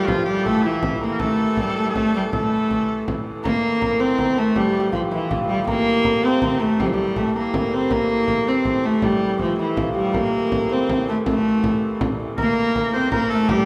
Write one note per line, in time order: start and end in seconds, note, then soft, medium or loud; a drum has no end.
0.00 3.44 A2 medium
0.00 3.45 E3 medium
0.00 0.10 G3 medium
0.00 0.26 G4 medium
0.00 0.45 A4 medium
0.00 1.04 C5 medium
0.07 0.27 F3 medium
0.07 0.25 F4 medium
0.07 0.70 F4 medium
0.07 frame drum medium
0.25 0.46 G4 medium
0.25 3.40 G4 medium
0.25 frame drum soft
0.30 0.48 G3 medium
0.44 0.67 A3 medium
0.44 0.65 A4 medium
0.44 1.07 A4 medium
0.44 frame drum medium
0.63 1.05 E3 medium
0.63 1.01 E4 medium
0.63 4.12 E4 medium
0.63 frame drum soft
0.83 frame drum medium
1.01 1.21 A#3 medium
1.01 1.25 A#4 medium
1.12 1.21 A#4 medium
1.19 1.62 A3 medium
1.19 1.75 A4 medium
1.19 frame drum medium
1.39 frame drum soft
1.57 1.80 G3 medium
1.57 frame drum medium
1.76 1.86 A3 medium
1.76 1.90 A4 medium
1.76 1.89 A4 medium
1.76 frame drum soft
1.85 1.94 G3 medium
1.90 2.15 A3 medium
1.90 2.29 A4 medium
1.90 2.31 A4 medium
1.95 frame drum medium
2.15 2.23 G3 medium
2.31 3.04 A3 medium
2.31 3.50 A4 medium
2.31 3.03 A4 medium
2.31 frame drum medium
2.71 frame drum medium
3.08 frame drum medium
3.44 7.89 A2 medium
3.44 7.90 E3 medium
3.44 4.01 A#3 medium
3.44 3.81 A#4 medium
3.44 frame drum medium
3.63 frame drum soft
3.81 4.19 A#4 medium
3.81 frame drum medium
4.00 4.40 C4 medium
4.00 6.23 C5 medium
4.00 frame drum soft
4.18 4.43 A#4 medium
4.18 frame drum medium
4.37 4.59 A3 medium
4.37 5.74 A4 medium
4.37 frame drum soft
4.56 4.92 G3 medium
4.56 4.67 G4 medium
4.56 frame drum medium
4.67 4.79 G4 medium
4.75 frame drum soft
4.80 5.49 G4 medium
4.92 5.01 F3 medium
4.92 5.18 F4 medium
4.92 frame drum medium
5.11 5.46 E3 medium
5.11 5.37 E4 medium
5.11 frame drum soft
5.31 8.67 F4 medium
5.31 frame drum medium
5.48 5.66 G3 medium
5.48 6.80 G4 medium
5.48 frame drum soft
5.67 6.26 A#3 loud
5.67 6.05 A#4 medium
5.67 frame drum medium
5.86 frame drum soft
6.05 6.42 A#4 medium
6.05 frame drum medium
6.23 6.63 C4 medium
6.23 7.71 C5 medium
6.23 frame drum soft
6.42 6.66 A#4 medium
6.42 frame drum medium
6.60 6.81 A3 medium
6.60 7.17 A4 medium
6.60 frame drum soft
6.79 6.88 G3 medium
6.79 6.93 G4 medium
6.79 frame drum medium
6.87 6.94 F3 medium
6.93 7.19 G3 medium
6.93 9.03 G4 medium
6.99 frame drum soft
7.16 7.35 A3 medium
7.16 7.42 A4 medium
7.16 frame drum medium
7.36 7.75 A#3 medium
7.36 7.53 A#4 medium
7.53 7.90 A#4 medium
7.53 frame drum medium
7.71 7.93 C4 medium
7.71 8.47 C5 medium
7.89 12.37 A2 medium
7.89 12.38 E3 medium
7.89 8.49 A#3 loud
7.89 8.91 A#4 medium
7.89 frame drum medium
8.09 frame drum soft
8.28 frame drum medium
8.47 8.87 C4 medium
8.47 10.69 C5 medium
8.47 frame drum soft
8.65 frame drum medium
8.84 9.05 A3 medium
8.84 10.19 A4 medium
8.84 frame drum soft
9.02 9.40 G3 medium
9.02 9.94 G4 medium
9.02 frame drum medium
9.21 frame drum soft
9.39 9.58 F3 medium
9.39 frame drum medium
9.59 9.94 E3 medium
9.59 9.82 E4 medium
9.59 frame drum soft
9.76 13.13 F4 medium
9.76 frame drum medium
9.94 10.18 G3 medium
9.94 13.08 G4 medium
10.13 10.74 A#3 medium
10.13 11.15 A#4 medium
10.13 frame drum medium
10.34 frame drum soft
10.52 frame drum medium
10.69 11.09 C4 medium
10.69 12.93 C5 medium
10.69 frame drum soft
10.89 frame drum medium
11.08 11.17 A3 medium
11.08 11.27 A4 medium
11.08 frame drum soft
11.26 11.98 A3 medium
11.26 12.44 A4 medium
11.26 frame drum medium
11.64 frame drum medium
12.01 frame drum medium
12.20 frame drum soft
12.37 13.65 A2 medium
12.37 13.65 E3 medium
12.37 12.98 A#3 loud
12.37 12.90 A#4 medium
12.37 12.75 A#4 medium
12.37 frame drum medium
12.57 frame drum soft
12.75 13.11 A#4 medium
12.75 frame drum medium
12.93 13.13 C4 medium
12.93 13.11 C5 medium
12.93 13.65 C5 medium
12.93 frame drum soft
13.11 13.35 A#3 medium
13.11 13.29 A#4 medium
13.11 13.49 A#4 medium
13.11 frame drum medium
13.30 13.53 A3 medium
13.30 13.50 A4 medium
13.30 frame drum soft
13.43 13.65 A4 medium
13.49 13.65 G3 loud
13.49 13.65 G4 medium
13.49 frame drum medium